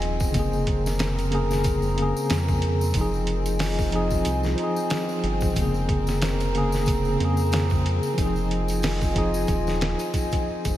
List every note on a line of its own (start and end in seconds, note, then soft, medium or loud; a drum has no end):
0.00 0.33 D#1 medium
0.00 0.37 F3 medium
0.00 10.77 C4 medium
0.00 0.37 D#4 medium
0.00 0.32 F4 medium
0.00 0.37 G#4 medium
0.00 0.32 D#5 medium
0.00 0.32 G#5 medium
0.00 closed hi-hat medium
0.20 kick loud
0.20 tambourine medium
0.31 1.27 C#3 medium
0.31 2.93 G#4 medium
0.31 2.93 A#4 medium
0.31 kick loud
0.31 closed hi-hat medium
0.31 tambourine medium
0.35 2.13 F1 loud
0.35 1.30 A#3 medium
0.35 2.93 A#5 medium
0.39 1.32 G#4 medium
0.53 tambourine soft
0.67 kick loud
0.67 closed hi-hat medium
0.86 snare soft
0.86 tambourine medium
0.99 snare loud
0.99 closed hi-hat medium
0.99 tambourine medium
1.18 closed hi-hat soft
1.18 tambourine soft
1.31 1.92 C#3 medium
1.31 1.95 A#3 medium
1.31 closed hi-hat medium
1.35 1.96 G#4 medium
1.51 snare soft
1.51 tambourine medium
1.64 kick loud
1.64 closed hi-hat medium
1.64 tambourine medium
1.82 tambourine soft
1.94 2.90 C#3 medium
1.98 2.93 A#3 medium
1.98 closed hi-hat medium
2.02 2.95 G#4 medium
2.17 tambourine medium
2.29 2.93 F2 medium
2.29 snare loud
2.29 closed hi-hat loud
2.29 tambourine medium
2.48 kick loud
2.48 tambourine soft
2.62 closed hi-hat medium
2.81 tambourine medium
2.92 4.23 F1 medium
2.92 3.88 F3 medium
2.92 5.54 F4 medium
2.92 5.54 D#5 medium
2.92 5.54 G#5 medium
2.92 kick loud
2.92 closed hi-hat medium
2.92 tambourine medium
2.97 3.91 D#4 medium
3.01 3.93 G#4 medium
3.14 tambourine soft
3.27 closed hi-hat medium
3.46 closed hi-hat soft
3.46 tambourine medium
3.59 snare loud
3.59 open hi-hat medium
3.59 tambourine medium
3.79 kick loud
3.79 tambourine soft
3.91 4.54 F3 medium
3.91 4.55 D#4 medium
3.91 closed hi-hat medium
3.95 4.56 G#4 medium
4.10 kick loud
4.10 tambourine medium
4.25 4.55 C2 medium
4.25 closed hi-hat medium
4.25 tambourine medium
4.43 snare soft
4.43 tambourine soft
4.55 5.51 F3 medium
4.55 closed hi-hat medium
4.60 5.54 D#4 medium
4.60 5.56 G#4 medium
4.76 tambourine medium
4.90 snare loud
4.90 closed hi-hat medium
4.90 tambourine medium
5.09 tambourine soft
5.23 5.53 G1 loud
5.23 closed hi-hat medium
5.41 kick loud
5.41 tambourine medium
5.53 7.17 F1 loud
5.53 6.49 C#3 medium
5.53 kick loud
5.53 closed hi-hat medium
5.53 tambourine medium
5.57 6.51 A#3 medium
5.57 8.15 G#4 medium
5.57 8.15 A#4 medium
5.57 8.15 A#5 medium
5.62 6.54 G#4 medium
5.74 tambourine soft
5.89 kick loud
5.89 closed hi-hat medium
6.07 snare soft
6.07 tambourine medium
6.22 snare loud
6.22 closed hi-hat medium
6.22 tambourine medium
6.40 closed hi-hat soft
6.40 tambourine soft
6.54 7.15 C#3 medium
6.54 7.17 A#3 medium
6.54 closed hi-hat medium
6.58 7.18 G#4 medium
6.72 snare soft
6.72 tambourine medium
6.86 kick loud
6.86 closed hi-hat medium
6.86 tambourine medium
7.05 tambourine soft
7.16 8.12 C#3 medium
7.20 8.00 F2 medium
7.20 8.14 A#3 medium
7.20 closed hi-hat medium
7.25 8.17 G#4 medium
7.37 tambourine medium
7.52 snare loud
7.52 closed hi-hat medium
7.52 tambourine medium
7.70 kick loud
7.70 tambourine soft
7.86 closed hi-hat medium
8.03 tambourine medium
8.14 9.10 F3 medium
8.14 10.76 F4 medium
8.14 10.76 D#5 medium
8.14 10.76 G#5 medium
8.18 9.45 F1 medium
8.18 9.12 D#4 medium
8.18 kick loud
8.18 closed hi-hat medium
8.18 tambourine medium
8.22 9.14 G#4 medium
8.36 tambourine soft
8.51 closed hi-hat medium
8.68 closed hi-hat soft
8.68 tambourine medium
8.82 snare loud
8.82 open hi-hat medium
8.82 tambourine medium
9.01 kick loud
9.01 tambourine soft
9.14 9.76 F3 medium
9.14 9.78 D#4 medium
9.14 kick loud
9.14 closed hi-hat medium
9.18 9.79 G#4 medium
9.34 tambourine medium
9.47 9.96 D#1 medium
9.47 kick medium
9.47 closed hi-hat medium
9.47 tambourine medium
9.67 snare soft
9.67 tambourine soft
9.81 snare loud
9.81 closed hi-hat medium
9.99 closed hi-hat soft
9.99 tambourine medium
10.14 kick medium
10.14 closed hi-hat medium
10.14 tambourine medium
10.32 kick loud
10.32 closed hi-hat medium
10.32 tambourine soft
10.65 10.77 F1 medium
10.65 kick medium
10.65 closed hi-hat medium
10.65 tambourine medium